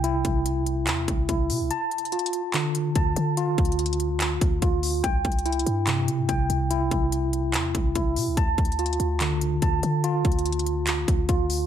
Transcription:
<<
  \new Staff \with { instrumentName = "Tine electric piano" } { \time 4/4 \key d \minor \tempo 4 = 144 <c e' g''>2. e'4 | a''4 f'4 d4 a''4 | f'2. f'4 | g''4 e'4 c4 g''4 |
e'2. e'4 | a''4 f'4 d4 a''4 | f'2. f'4 | }
  \new Staff \with { instrumentName = "808-style bass" } { \clef bass \time 4/4 \key d \minor c,8 c,4. e,8 c,8 c,8 c16 c,16 | r2. d,8 d8~ | d8 d,2 d,8 d,4 | c,8 c,4 g,4 c16 g,16 c,8 c,8~ |
c,8 c,4. e,8 c,8 c,8 c16 c,16 | d,8 d,4 d,4. d,8 d8~ | d8 d,2 d,8 d,4 | }
  \new DrumStaff \with { instrumentName = "Drums" } \drummode { \time 4/4 hh8 <hh bd>8 hh8 hh8 <hc hh>8 <hh bd>8 <hh bd>8 hho8 | \tuplet 3/2 { hh16 r16 r16 hh16 hh16 hh16 hh16 hh16 hh16 hh16 r16 r16 } <hc hh>8 hh8 <hh bd>8 hh8 | \tuplet 3/2 { hh16 r16 r16 <hh bd>16 hh16 hh16 hh16 hh16 hh16 hh16 r16 r16 } <hc hh>8 <hh bd>8 <hh bd>8 hho8 | \tuplet 3/2 { <hh bd>16 r16 r16 <hh bd>16 hh16 hh16 hh16 hh16 hh16 hh16 r16 r16 } <hc hh>8 hh8 <hh bd>8 hh8 |
hh8 <hh bd>8 hh8 hh8 <hc hh>8 <hh bd>8 <hh bd>8 hho8 | \tuplet 3/2 { <hh bd>16 r16 r16 <hh bd>16 hh16 hh16 hh16 hh16 hh16 hh16 r16 r16 } <hc hh>8 hh8 <hh bd>8 hh8 | \tuplet 3/2 { hh16 r16 r16 <hh bd>16 hh16 hh16 hh16 hh16 hh16 hh16 r16 r16 } <hc hh>8 <hh bd>8 <hh bd>8 hho8 | }
>>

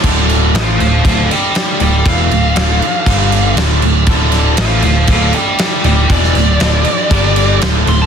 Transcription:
<<
  \new Staff \with { instrumentName = "Lead electric guitar" } { \time 4/4 \key d \minor \tempo 4 = 119 r4 <c'' f''>8 <c'' f''>8 <c'' f''>8 <d'' g''>8 <d'' g''>8 <d'' g''>8 | f''2. r4 | r4 <c'' f''>8 <c'' f''>8 <c'' f''>8 <d'' g''>8 <d'' g''>8 <d'' g''>8 | d''2. r8 c'''16 a''16 | }
  \new Staff \with { instrumentName = "Tonewheel organ" } { \time 4/4 \key d \minor << { <d' f''>1~ | <d' f''>2 g4 e''4~ | e''1~ | e''2 <g a'>4 e''4 | } \\ { a'1~ | a'2 d'2~ | d'2. g'4~ | g'2 r2 | } >> }
  \new Staff \with { instrumentName = "Distorted electric guitar" } { \clef bass \time 4/4 \key d \minor <d, a, d>4 <a, e a>8 <d, a,>8 <d, a, d>8 r4 <d, a,>8 | <e, b, e>8 <d, a,>8 <d, a, d>8 r8 <g, d g>4 <d, a, d>8 <d, a,>8 | <d, a, d>4 <a, e a>8 <d, a,>8 <d, a, d>8 r4 <d, a,>8 | <e, b, e>8 <d, a,>8 <d, a, d>8 r8 <g, d g>4 <d, a, d>8 <d, a,>8 | }
  \new Staff \with { instrumentName = "Overdriven electric guitar" } { \clef bass \time 4/4 \key d \minor <d, a, d>4 <a, e a>8 <d, a,>8 <d, a, d>8 r4 <d, a,>8 | <e, b, e>8 <d, a,>8 <d, a, d>8 r8 <g, d g>4 <d, a, d>8 <d, a,>8 | <d, a, d>4 <a, e a>8 <d, a,>8 <d, a, d>8 r4 <d, a,>8 | <e, b, e>8 <d, a,>8 <d, a, d>8 r8 <g, d g>4 <d, a, d>8 <d, a,>8 | }
  \new Staff \with { instrumentName = "Picked electric bass" } { \clef bass \time 4/4 \key d \minor d,,4 a,,8 d,,8 d,,8 r4 d,,8 | e,,8 d,,8 d,,8 r8 g,,4 d,,8 d,,8 | d,,4 a,,8 d,,8 d,,8 r4 d,,8 | e,,8 d,,8 d,,8 r8 g,,4 d,,8 d,,8 | }
  \new DrumStaff \with { instrumentName = "Drums" } \drummode { \time 4/4 <cymc bd>8 cymc8 <cymc sn>8 cymc8 <cymc bd>8 cymc8 <cymc sn>8 cymc8 | <cymc bd>8 cymc8 <cymc sn>8 cymc8 <cymc bd>8 cymc8 <cymc sn>8 cymc8 | <cymc bd>8 <cymc sn>8 <cymc sn>8 cymc8 <cymc bd>8 cymc8 <cymc sn>8 cymc8 | <cymc bd>16 sn16 <cymc sn>8 <cymc sn>8 cymc8 <cymc bd>8 cymc8 <cymc sn>8 cymc8 | }
>>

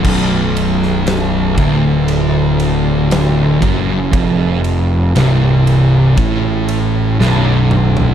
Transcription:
<<
  \new Staff \with { instrumentName = "Distorted electric guitar" } { \clef bass \time 4/4 \key b \minor \tempo 4 = 59 b,,4. d,2 fis,8 | eis,4 c,4 a,4 b,,4 | }
  \new Staff \with { instrumentName = "Distorted electric guitar" } { \clef bass \time 4/4 \key b \minor b,,4. d,2 fis,8 | eis,4 c,4 a,4 b,,4 | }
  \new Staff \with { instrumentName = "Fingered electric bass" } { \clef bass \time 4/4 \key b \minor b,,,4. d,,2 fis,,8 | eis,,4 c,,4 a,,4 b,,,4 | }
  \new DrumStaff \with { instrumentName = "Drums" } \drummode { \time 4/4 <cymc bd>8 cymr16 sn16 <cymr sn>8 <bd cymr>8 cymr8 cymr8 <cymr sn>8 <bd cymr>8 | <bd cymr>8 cymr8 <cymr sn>8 cymr8 <bd cymr>8 cymr8 sn8 toml16 tomfh16 | }
>>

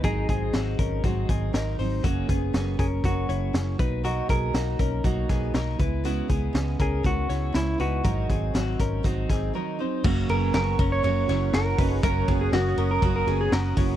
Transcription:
<<
  \new Staff \with { instrumentName = "Analog synth pad" } { \time 4/4 \key fis \mixolydian \tempo 4 = 120 << { r1 | r1 | r1 | r1 |
r1 | cis'''1 | dis'''1 | } \\ { r1 | r1 | r1 | r1 |
r1 | <ais' cis'' fis''>1~ | <ais' cis'' fis''>1 | } >> }
  \new Staff \with { instrumentName = "Clean electric guitar" } { \time 4/4 \key fis \mixolydian gis'8 gis'2. r8 | r4. gis'8 fis'2 | fis'8 ais'2. r8 | r4. gis'8 fis'4 e'8 fis'8~ |
fis'2. r4 | r8 ais'8 ais'8. cis''16 cis''4 ais'4 | ais'8. gis'16 fis'8. ais'8 ais'8 gis'16 fis'8. r16 | }
  \new Staff \with { instrumentName = "Clean electric guitar" } { \time 4/4 \key fis \mixolydian <dis' ais'>8 <bis gis'>8 <bis fis'>8 <cis' ais'>8 <bis fis'>8 <bis gis'>8 <dis' ais'>8 <dis' bis'>8 | <ais fis'>8 <b gis'>4 <cis' ais'>4 <e' cis''>4 <dis' b'>8 | <dis' ais'>8 <b gis'>8 <ais fis'>8 <cis' ais'>8 <ais fis'>8 <b gis'>8 <dis' ais'>8 <e' b'>8 | <b fis'>8 <b gis'>4 <cis' ais'>4 <e' cis''>4 <dis' b'>8 |
<dis' ais'>8 <bis gis'>8 <bis fis'>8 <cis' ais'>8 <bis fis'>8 <bis gis'>8 <dis' ais'>8 <dis' bis'>8 | <ais fis'>8 <b gis'>4 <cis' ais'>4 <e' cis''>4 <dis' b'>8 | <cis' ais'>8 <b gis'>8 <ais fis'>8 <cis' ais'>8 <ais fis'>8 <b gis'>8 <cis' ais'>8 <e' cis''>8 | }
  \new Staff \with { instrumentName = "Steel-string acoustic guitar" } { \time 4/4 \key fis \mixolydian <gis, dis fis bis dis'>4 <dis fis bis dis'>4 <gis, dis fis bis dis'>4 <dis fis bis dis'>8 <fis bis dis'>8 | <fis ais cis' gis'>8 <ais cis' gis'>8 <fis ais cis' gis'>4 <fis ais cis' gis'>4 <fis ais cis' gis'>8 <ais dis' fis'>8 | <b, fis ais dis' fis'>4 <fis ais dis' fis'>4 <b, fis ais dis' fis'>4 <fis ais dis' fis'>8 <gis b e'>8 | <cis gis b e'>8 <gis b e'>8 <cis gis b e'>4 <cis gis b e'>4 <cis gis b e'>8 <gis b e'>8 |
<gis, dis fis bis dis'>4 <dis fis bis dis'>4 <gis, dis fis bis dis'>4 <dis fis bis dis'>8 <fis bis dis'>8 | <fis, cis fis ais cis' fis'>4 <fis ais cis' fis'>4 <fis, cis fis ais cis' fis'>8 <fis ais cis' fis'>4 <fis ais cis' fis'>8 | <fis, cis fis ais cis' fis'>8 <fis ais cis' fis'>8 <fis ais cis' fis'>4 <fis, cis fis ais cis' fis'>8 <fis ais cis' fis'>4 <fis ais cis' fis'>8 | }
  \new Staff \with { instrumentName = "Fingered electric bass" } { \clef bass \time 4/4 \key fis \mixolydian gis,,8 gis,,8 gis,,8 gis,,8 gis,,8 gis,,8 gis,,8 gis,,8 | fis,,8 fis,,8 fis,,8 fis,,8 fis,,8 fis,,8 fis,,8 b,,8~ | b,,8 b,,8 b,,8 b,,8 b,,8 b,,8 b,,8 cis,8~ | cis,8 cis,8 cis,8 cis,8 cis,8 cis,8 cis,8 cis,8 |
gis,,8 gis,,8 gis,,8 gis,,8 gis,,8 gis,,8 r4 | fis,,8 fis,,8 fis,,8 fis,,8 fis,,8 fis,,8 fis,,8 fis,,8 | fis,,8 fis,,8 fis,,8 fis,,8 fis,,8 fis,,8 fis,,8 fis,,8 | }
  \new DrumStaff \with { instrumentName = "Drums" } \drummode { \time 4/4 <hh bd>8 <hh bd>8 <hh sn>8 <hh bd>8 <hh bd>8 <hh bd>8 <hh sn>8 hho8 | <hh bd>8 <hh bd>8 <hh sn>8 <hh bd>8 <hh bd>8 hh8 <hh sn>8 <hh bd>8 | hh8 <hh bd>8 <hh sn>8 <hh bd>8 <hh bd>8 <hh bd sn>8 <hh sn>8 <hh bd>8 | hh8 <hh bd>8 <hh sn>8 <hh bd>8 <hh bd>8 <hh sn>8 <hh sn>8 hh8 |
<hh bd>8 <hh bd>8 <hh sn>8 <hh bd>8 <hh bd>8 <hh bd sn>8 r4 | <cymc bd>8 cymr8 <cymr sn>8 <bd cymr>8 cymr8 <cymr sn>8 <cymr sn>8 <hho bd cymr>8 | <hhp bd cymr>8 <bd cymr>8 <cymr sn>8 cymr8 <bd cymr>8 cymr8 <cymr sn>8 <hho bd cymr>8 | }
>>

